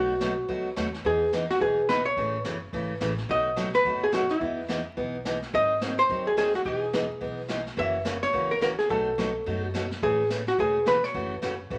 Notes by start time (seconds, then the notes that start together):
Already playing: B1 B2 F#3 A3 D#4 F#4
0.20 B2 F#3 A3 D#4 F#4, snare, hi-hat pedal
0.48 C#2 B2 F#3 A3 D#4 F#4, brush sweep, kick
0.76 D#2 B2 F#3 A3 D#4 F#4, snare, hi-hat pedal
0.94 snare
1.05 E2 E3 B3 D#4 G#4, brush sweep, kick
1.33 E3 B3 D#4 G#4, snare, hi-hat pedal
1.50 F#4, snare
1.61 B1 E3 B3 D#4 G#4, brush sweep, kick
1.89 E3 B3 D#4 G#4 B4, snare, hi-hat pedal
2.05 C#5
2.17 A1 C#3 E3 A3 C#4 G#4, brush sweep, kick
2.44 F#1 C#3 E3 A3 C#4 G#4, snare, hi-hat pedal
2.73 G#1 C#3 E3 A3 C#4 G#4, brush sweep, kick
3.00 A1 C#3 E3 A3 C#4 G#4, snare, hi-hat pedal
3.18 snare
3.29 B1 B2 F#3 A3 D#4 F#4 D#5, brush sweep, kick
3.56 B2 F#3 A3 D#4 F#4, snare, hi-hat pedal
3.74 B4, snare
3.85 F#1 B2 F#3 A3 D#4 F#4, brush sweep, kick
4.03 G#4
4.12 B2 F#3 A3 D#4 F#4, snare, hi-hat pedal
4.29 E4, snare
4.41 E2 E3 B3 D#4 G#4, brush sweep, kick
4.68 E3 B3 D#4 G#4, snare, hi-hat pedal
4.97 B1 E3 B3 D#4 G#4, brush sweep, kick
5.25 E3 B3 D#4 G#4, snare, hi-hat pedal
5.42 snare
5.53 G#1 D#3 F#3 C4 D#4 G#4 D#5, brush sweep, kick
5.81 D#3 F#3 C4 D#4 G#4, snare, hi-hat pedal
5.98 C5, snare
6.09 D#2 D#3 F#3 C4 D#4 G#4, brush sweep, kick
6.27 G#4
6.37 D#3 F#3 C4 D#4 G#4, snare, hi-hat pedal
6.54 F#4, snare
6.65 E1 E3 B3 D#4 G#4, brush sweep, kick
6.93 E3 B3 D#4 G#4, snare, hi-hat pedal
7.21 B1 E3 B3 D#4 G#4, brush sweep, kick
7.48 E3 B3 D#4 G#4, snare, hi-hat pedal
7.66 snare
7.77 F#1 C#3 E3 A#3 C#4 F#4 E5, brush sweep, kick
8.05 C#3 E3 A#3 C#4 F#4, snare, hi-hat pedal
8.23 C#5, snare
8.33 C#2 C#3 E3 A#3 C#4 F#4, brush sweep, kick
8.51 A#4
8.61 C#3 E3 A#3 C#4 F#4 A#4, snare, hi-hat pedal
8.79 G#4, snare
8.89 B1 B2 F#3 A3 D#4 F#4 A4, brush sweep, kick
9.18 B2 F#3 A3 D#4 F#4, snare, hi-hat pedal
9.46 F#2 B2 F#3 A3 D#4 F#4, brush sweep, kick
9.74 B2 F#3 A3 D#4 F#4, snare, hi-hat pedal
9.91 snare
10.02 A1 C#3 E3 A3 C#4 G#4, brush sweep, kick
10.30 C#3 E3 A3 C#4 G#4, snare, hi-hat pedal
10.47 F#4, snare
10.58 E1 C#3 E3 A3 C#4 G#4, brush sweep, kick
10.86 C#3 E3 A3 C#4 G#4 B4, snare, hi-hat pedal
11.03 C#5, snare
11.14 F#1 C#3 E3 A3 C#4 F#4, brush sweep, kick
11.42 F#1 C#3 E3 A3 C#4 F#4, snare, hi-hat pedal
11.70 G#1 C#3 E3 A3 C#4 F#4, brush sweep, kick